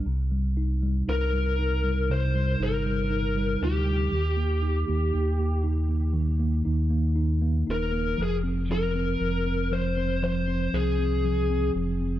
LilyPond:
<<
  \new Staff \with { instrumentName = "Lead electric guitar" } { \time 4/4 \key ees \major \tempo 4 = 59 r4 bes'4 c''8 bes'4 g'8~ | g'4. r2 bes'8 | aes'8 bes'4 c''8 c''8 aes'4 r8 | }
  \new Staff \with { instrumentName = "Tine electric piano" } { \time 4/4 \key ees \major c16 g16 ees'16 g16 ees'16 g16 ees'16 g16 c16 g16 ees'16 g16 ees'16 g16 ees'16 g16 | ees16 bes16 ees'16 bes16 ees'16 bes16 ees'16 bes16 ees16 bes16 ees'16 bes16 ees'16 bes16 ees'16 bes16 | f16 c'16 f16 c'16 f16 c'16 f16 c'16 f16 c'16 f16 c'16 f16 c'16 f16 c'16 | }
  \new Staff \with { instrumentName = "Sub bass" } { \clef bass \time 4/4 \key ees \major c,4 c,4. g,,4 d,8 | ees,8. ees,16 ees,4. ees,4 ees,,8 | f,,4 f,,4. c,4 f,,8 | }
>>